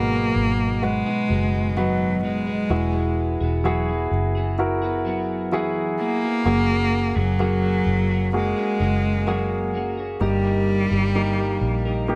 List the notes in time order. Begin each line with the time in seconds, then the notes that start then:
Already playing: G#1 G#2 B2 D#3 F#3 A#3 B3 D#4 F#4 G#4 A#4
0.12 F#3 D#4 G#4
0.36 G#1
0.82 G#3 B3 F#4 B4
1.06 F#3 B3 D#4 G#4
1.29 F#1 F#3 B3 D#4 G#4
1.76 G#2 D#3 F#3 B3 D#4 F#4 G#4 B4
2.23 F#3 G#3 B3 D#4 G#4
2.47 F#3 B3 D#4 G#4
2.69 E1 E3 F#3 B3 E4 F#4 G#4
2.93 B3 F#4 G#4
3.41 E1 B3 F#4 G#4
3.64 E3 F#3 B3 E4 F#4 G#4
3.88 B3 F#4 G#4
4.11 F#1
4.35 B3 F#4 G#4
4.59 E4 F#4 A#4
4.82 B3 F#4 G#4
5.05 F#3 B3 F#4 G#4
5.52 E3 F#3 B3 E4 F#4 G#4
5.99 F#3 A#3 B3 F#4 G#4
6.22 B3 F#4 G#4
6.45 F#1 F#3 A#3 C#4 F#4 G#4
6.69 C#4 F#4 G#4
7.16 F#1 F#3 C#4 F#4 G#4
7.39 F#3 A#3 C#4 F#4 G#4
7.63 C#4 F#4 G#4
7.86 F#1
8.10 C#4 F#4 G#4
8.33 G#3 A#3 F#4 G#4
8.56 C#4 F#4 G#4
8.80 F#1 A#3 C#4 F#4 G#4
9.27 F#3 A#3 C#4 F#4 G#4
9.74 A#3 C#4 F#4 G#4
9.97 C#4 F#4 G#4
10.20 G1 G2 G3 A#3 D#4 G4 A#4
10.44 D#4 G4 A#4
10.91 G1 D#4 G4 A#4
11.15 G3 A#3 D#4 G4 A#4
11.38 D#4 G4 A#4
11.61 A#1
11.85 D#4 G4 A#4
12.08 A#3 D#4 G4